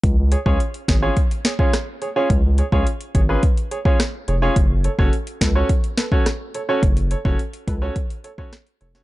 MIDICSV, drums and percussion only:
0, 0, Header, 1, 2, 480
1, 0, Start_track
1, 0, Tempo, 566038
1, 30, Time_signature, 4, 2, 24, 8
1, 7663, End_track
2, 0, Start_track
2, 0, Title_t, "Drums"
2, 30, Note_on_c, 9, 36, 117
2, 30, Note_on_c, 9, 42, 81
2, 115, Note_off_c, 9, 36, 0
2, 115, Note_off_c, 9, 42, 0
2, 268, Note_on_c, 9, 42, 82
2, 353, Note_off_c, 9, 42, 0
2, 389, Note_on_c, 9, 36, 100
2, 474, Note_off_c, 9, 36, 0
2, 511, Note_on_c, 9, 42, 63
2, 595, Note_off_c, 9, 42, 0
2, 630, Note_on_c, 9, 42, 58
2, 715, Note_off_c, 9, 42, 0
2, 749, Note_on_c, 9, 36, 93
2, 750, Note_on_c, 9, 42, 78
2, 752, Note_on_c, 9, 38, 117
2, 834, Note_off_c, 9, 36, 0
2, 835, Note_off_c, 9, 42, 0
2, 837, Note_off_c, 9, 38, 0
2, 988, Note_on_c, 9, 42, 65
2, 990, Note_on_c, 9, 36, 89
2, 1073, Note_off_c, 9, 42, 0
2, 1075, Note_off_c, 9, 36, 0
2, 1113, Note_on_c, 9, 42, 57
2, 1198, Note_off_c, 9, 42, 0
2, 1228, Note_on_c, 9, 38, 106
2, 1229, Note_on_c, 9, 42, 80
2, 1313, Note_off_c, 9, 38, 0
2, 1314, Note_off_c, 9, 42, 0
2, 1348, Note_on_c, 9, 36, 93
2, 1433, Note_off_c, 9, 36, 0
2, 1471, Note_on_c, 9, 37, 98
2, 1471, Note_on_c, 9, 38, 69
2, 1471, Note_on_c, 9, 42, 75
2, 1556, Note_off_c, 9, 37, 0
2, 1556, Note_off_c, 9, 38, 0
2, 1556, Note_off_c, 9, 42, 0
2, 1710, Note_on_c, 9, 42, 63
2, 1795, Note_off_c, 9, 42, 0
2, 1950, Note_on_c, 9, 36, 119
2, 1950, Note_on_c, 9, 42, 78
2, 2035, Note_off_c, 9, 36, 0
2, 2035, Note_off_c, 9, 42, 0
2, 2188, Note_on_c, 9, 42, 76
2, 2273, Note_off_c, 9, 42, 0
2, 2309, Note_on_c, 9, 36, 94
2, 2394, Note_off_c, 9, 36, 0
2, 2431, Note_on_c, 9, 42, 64
2, 2515, Note_off_c, 9, 42, 0
2, 2549, Note_on_c, 9, 42, 57
2, 2634, Note_off_c, 9, 42, 0
2, 2669, Note_on_c, 9, 36, 89
2, 2669, Note_on_c, 9, 42, 71
2, 2754, Note_off_c, 9, 36, 0
2, 2754, Note_off_c, 9, 42, 0
2, 2907, Note_on_c, 9, 42, 69
2, 2909, Note_on_c, 9, 36, 96
2, 2992, Note_off_c, 9, 42, 0
2, 2994, Note_off_c, 9, 36, 0
2, 3031, Note_on_c, 9, 42, 59
2, 3116, Note_off_c, 9, 42, 0
2, 3150, Note_on_c, 9, 42, 76
2, 3234, Note_off_c, 9, 42, 0
2, 3267, Note_on_c, 9, 36, 101
2, 3352, Note_off_c, 9, 36, 0
2, 3390, Note_on_c, 9, 37, 96
2, 3390, Note_on_c, 9, 38, 117
2, 3390, Note_on_c, 9, 42, 78
2, 3475, Note_off_c, 9, 37, 0
2, 3475, Note_off_c, 9, 38, 0
2, 3475, Note_off_c, 9, 42, 0
2, 3629, Note_on_c, 9, 42, 65
2, 3714, Note_off_c, 9, 42, 0
2, 3868, Note_on_c, 9, 42, 81
2, 3869, Note_on_c, 9, 36, 119
2, 3953, Note_off_c, 9, 42, 0
2, 3954, Note_off_c, 9, 36, 0
2, 4107, Note_on_c, 9, 42, 76
2, 4192, Note_off_c, 9, 42, 0
2, 4229, Note_on_c, 9, 36, 100
2, 4313, Note_off_c, 9, 36, 0
2, 4350, Note_on_c, 9, 42, 62
2, 4435, Note_off_c, 9, 42, 0
2, 4469, Note_on_c, 9, 42, 57
2, 4554, Note_off_c, 9, 42, 0
2, 4589, Note_on_c, 9, 36, 93
2, 4590, Note_on_c, 9, 42, 75
2, 4592, Note_on_c, 9, 38, 112
2, 4673, Note_off_c, 9, 36, 0
2, 4674, Note_off_c, 9, 42, 0
2, 4677, Note_off_c, 9, 38, 0
2, 4828, Note_on_c, 9, 42, 66
2, 4829, Note_on_c, 9, 36, 88
2, 4913, Note_off_c, 9, 42, 0
2, 4914, Note_off_c, 9, 36, 0
2, 4951, Note_on_c, 9, 42, 58
2, 5036, Note_off_c, 9, 42, 0
2, 5067, Note_on_c, 9, 38, 107
2, 5069, Note_on_c, 9, 42, 77
2, 5152, Note_off_c, 9, 38, 0
2, 5154, Note_off_c, 9, 42, 0
2, 5187, Note_on_c, 9, 36, 95
2, 5272, Note_off_c, 9, 36, 0
2, 5310, Note_on_c, 9, 37, 97
2, 5310, Note_on_c, 9, 38, 67
2, 5311, Note_on_c, 9, 42, 79
2, 5395, Note_off_c, 9, 37, 0
2, 5395, Note_off_c, 9, 38, 0
2, 5395, Note_off_c, 9, 42, 0
2, 5550, Note_on_c, 9, 42, 65
2, 5635, Note_off_c, 9, 42, 0
2, 5789, Note_on_c, 9, 36, 118
2, 5790, Note_on_c, 9, 42, 78
2, 5874, Note_off_c, 9, 36, 0
2, 5875, Note_off_c, 9, 42, 0
2, 5909, Note_on_c, 9, 42, 54
2, 5994, Note_off_c, 9, 42, 0
2, 6028, Note_on_c, 9, 42, 83
2, 6113, Note_off_c, 9, 42, 0
2, 6149, Note_on_c, 9, 36, 103
2, 6233, Note_off_c, 9, 36, 0
2, 6270, Note_on_c, 9, 42, 63
2, 6354, Note_off_c, 9, 42, 0
2, 6390, Note_on_c, 9, 42, 57
2, 6474, Note_off_c, 9, 42, 0
2, 6509, Note_on_c, 9, 36, 92
2, 6510, Note_on_c, 9, 42, 76
2, 6593, Note_off_c, 9, 36, 0
2, 6594, Note_off_c, 9, 42, 0
2, 6748, Note_on_c, 9, 42, 67
2, 6749, Note_on_c, 9, 36, 94
2, 6833, Note_off_c, 9, 42, 0
2, 6834, Note_off_c, 9, 36, 0
2, 6872, Note_on_c, 9, 42, 58
2, 6957, Note_off_c, 9, 42, 0
2, 6990, Note_on_c, 9, 42, 77
2, 7075, Note_off_c, 9, 42, 0
2, 7108, Note_on_c, 9, 36, 92
2, 7192, Note_off_c, 9, 36, 0
2, 7231, Note_on_c, 9, 37, 96
2, 7231, Note_on_c, 9, 38, 117
2, 7231, Note_on_c, 9, 42, 79
2, 7315, Note_off_c, 9, 37, 0
2, 7315, Note_off_c, 9, 38, 0
2, 7316, Note_off_c, 9, 42, 0
2, 7349, Note_on_c, 9, 42, 52
2, 7433, Note_off_c, 9, 42, 0
2, 7469, Note_on_c, 9, 42, 64
2, 7554, Note_off_c, 9, 42, 0
2, 7589, Note_on_c, 9, 38, 69
2, 7663, Note_off_c, 9, 38, 0
2, 7663, End_track
0, 0, End_of_file